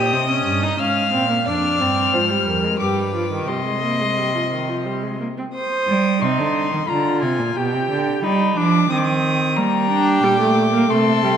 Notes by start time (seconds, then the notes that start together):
Already playing: A#2 G4 D#5 D#6
0.13 C3 C4
0.30 C#4
0.46 G2
0.63 D#4
0.79 G#2 C#4 F5 F6
1.13 A#2 C4
1.29 A#3
1.45 F2 D4 D5 F6
1.79 G2 C4
2.13 G#2 F3 C5
2.30 G3
2.46 F2 A#4
2.64 G#3
2.80 G2 G3 B4 D6
3.14 F3
3.32 D#3
3.47 C3 G3 D#5 C6
3.66 G#3
3.83 A#3
4.01 G#3
4.17 G3
4.34 F3
4.52 D#3
4.69 F3
4.86 G3
5.03 G#3
5.20 A#3
5.37 C4
5.54 C5 D#6
5.88 G3
6.22 C3 D#4 C6
6.39 D3
6.72 D#3
6.88 D3 F4 A#5
7.22 C3 G#5
7.39 A#2
7.56 B2 G4 G5
7.73 C3
7.90 D3
8.23 G3 D#4 B5
8.56 F3 D4 D6
8.90 D#3 C4 D#6
8.98 D6
9.04 D#6
9.57 G3 A#3 G4 A#5
9.90 D4
10.23 A#2 G3 D6
10.40 A3
10.73 A#3
10.89 C3 A3 A4 C6
11.23 G3